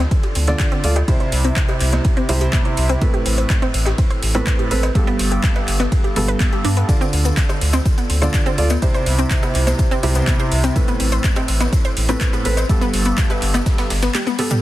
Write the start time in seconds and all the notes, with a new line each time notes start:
Already playing: D3 F4 A4 D5
0.11 kick, closed hi-hat, ride
0.23 G4, closed hi-hat, ride
0.35 D2, open hi-hat, ride
0.47 D3 F4 A4 C5 D5, snare, closed hi-hat, high conga
0.60 kick, snare, clap, closed hi-hat, ride
0.72 C4, closed hi-hat
0.84 D2 F4 A4 D5, open hi-hat, ride
0.96 G4, closed hi-hat, cowbell
1.08 C3 E4 G4 C5, kick, closed hi-hat, ride
1.20 C5, closed hi-hat
1.32 C2, open hi-hat
1.44 C4, closed hi-hat
1.56 kick, snare, clap, closed hi-hat, ride
1.69 G4, closed hi-hat, cowbell
1.80 C2, clap, open hi-hat, ride
1.93 C5, snare, closed hi-hat, cowbell, high conga
2.05 kick, closed hi-hat, ride
2.17 C4, closed hi-hat
2.29 C2 C3 E4 G4 C5, open hi-hat, ride
2.41 G4, closed hi-hat
2.52 kick, snare, clap, closed hi-hat, ride, high conga
2.65 C5, closed hi-hat
2.77 C2, open hi-hat, ride
2.89 C4, closed hi-hat
3.02 A2 C4 A4 B4, kick, closed hi-hat, ride
3.14 G4, closed hi-hat
3.26 A1, open hi-hat, ride
3.38 C5, closed hi-hat
3.50 kick, snare, clap, closed hi-hat, ride
3.62 C4, closed hi-hat, ride, cowbell
3.74 A1, open hi-hat, ride
3.86 G4, snare, closed hi-hat, cowbell
3.98 kick, closed hi-hat, ride
4.10 C5, closed hi-hat, ride
4.23 A1, open hi-hat, ride
4.35 A2 C4 A4 B4, snare, closed hi-hat, high conga
4.47 kick, snare, clap, closed hi-hat, ride
4.59 G4, closed hi-hat
4.71 A1 C4 A4 B4, open hi-hat, ride
4.83 C5, closed hi-hat, cowbell
4.95 G2 B3 G4 A4, kick, closed hi-hat, ride
5.07 B3, closed hi-hat
5.19 G1, open hi-hat
5.32 G4, closed hi-hat
5.44 kick, snare, clap, closed hi-hat, ride
5.56 B4, closed hi-hat, cowbell
5.68 G1, clap, open hi-hat, ride
5.80 B3, snare, closed hi-hat, cowbell, high conga
5.92 kick, closed hi-hat, ride
6.04 G4, closed hi-hat
6.16 G1 G2 B2 B3 G4 A4, open hi-hat, ride
6.28 B4, closed hi-hat
6.40 kick, snare, clap, closed hi-hat, ride, high conga
6.53 G4, closed hi-hat
6.64 G2 D4, open hi-hat, ride
6.77 B3, closed hi-hat
6.89 D3 F4 A4 D5, kick, closed hi-hat, ride, cabasa
7.01 C4, closed hi-hat, cabasa
7.13 D2, open hi-hat, ride
7.25 B3, closed hi-hat, cabasa
7.37 kick, snare, clap, closed hi-hat, ride, cabasa
7.49 C5, cross-stick, closed hi-hat, ride, cowbell, cabasa
7.61 D2, open hi-hat, ride
7.73 C4, snare, closed hi-hat, cowbell, cabasa
7.86 kick, closed hi-hat, ride, cabasa
7.98 B3, closed hi-hat, ride, cabasa
8.10 D2, open hi-hat, ride
8.22 D3 F4 A4 C5 D5, snare, closed hi-hat, high conga, cabasa
8.34 kick, snare, clap, closed hi-hat, ride, cabasa
8.46 C4, cross-stick, closed hi-hat, cabasa
8.58 D2 F4 A4 D5, open hi-hat, ride
8.70 B3, closed hi-hat, cowbell, cabasa
8.82 C3 E4 G4 C5, kick, closed hi-hat, ride, cabasa
8.94 C5, closed hi-hat, cabasa
9.06 C2, open hi-hat
9.19 C4, closed hi-hat, cabasa
9.30 kick, snare, clap, closed hi-hat, ride, cabasa
9.43 B3, cross-stick, closed hi-hat, cowbell, cabasa
9.55 C2, clap, open hi-hat, ride
9.67 C5, snare, closed hi-hat, cowbell, high conga, cabasa
9.79 kick, closed hi-hat, ride, cabasa
9.91 C4, closed hi-hat, cabasa
10.03 C2 C3 E4 G4 C5, open hi-hat, ride
10.15 B3, closed hi-hat, cabasa
10.27 kick, snare, clap, closed hi-hat, ride, high conga, cabasa
10.39 C5, cross-stick, closed hi-hat, cabasa
10.52 C2, open hi-hat, ride
10.64 C4, closed hi-hat, cabasa
10.76 A2 C4 A4 B4, kick, closed hi-hat, ride, cabasa
10.88 B3, closed hi-hat, cabasa
11.00 A1, open hi-hat, ride
11.12 C5, closed hi-hat, cabasa
11.24 kick, snare, clap, closed hi-hat, ride, cabasa
11.36 C4, cross-stick, closed hi-hat, ride, cowbell, cabasa
11.48 A1, open hi-hat, ride
11.60 B3, snare, closed hi-hat, cowbell, cabasa
11.73 kick, closed hi-hat, ride, cabasa
11.84 C5, closed hi-hat, ride, cabasa
11.97 A1, open hi-hat, ride
12.09 A2 C4 A4 B4, snare, closed hi-hat, high conga, cabasa
12.20 kick, snare, clap, closed hi-hat, ride, cabasa
12.33 B3, cross-stick, closed hi-hat, cabasa
12.45 A1 C4 A4 B4, open hi-hat, ride
12.57 C5, closed hi-hat, cowbell, cabasa
12.69 G2 B3 G4 A4, kick, closed hi-hat, ride, cabasa
12.81 B3, closed hi-hat, cabasa
12.94 G1, open hi-hat
13.05 B3, closed hi-hat, cabasa
13.18 kick, snare, clap, closed hi-hat, ride, cabasa
13.30 B4, cross-stick, closed hi-hat, cowbell, cabasa
13.42 G1, clap, open hi-hat, ride
13.54 B3, snare, closed hi-hat, cowbell, high conga, cabasa
13.66 kick, snare, closed hi-hat, ride, cabasa
13.78 B3, snare, closed hi-hat, ride, cabasa
13.90 G1, snare, open hi-hat, ride
14.02 B3, snare, closed hi-hat, ride, cabasa
14.15 G4, snare, clap, closed hi-hat, high tom, ride, high conga, cabasa
14.27 B3, cross-stick, closed hi-hat, high tom, cabasa
14.39 B3 G4 A4, open hi-hat, ride
14.50 G3, closed hi-hat, mid tom, high conga, cabasa